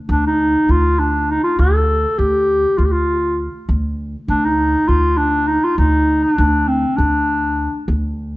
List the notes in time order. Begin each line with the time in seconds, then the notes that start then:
0.09 D2 D4
0.27 D#4
0.69 D2 F4
0.99 D4
1.31 D#4
1.44 F4
1.59 D2 A4
2.18 D2 G4
2.78 D2 F4
2.85 G4
2.92 F4
3.69 D2
4.28 D2 D4
4.45 D#4
4.88 D2 F4
5.18 D4
5.47 D#4
5.64 F4
5.78 D2 D#4
6.23 D4
6.38 D2
6.68 C4
6.96 D2 D4
7.88 D2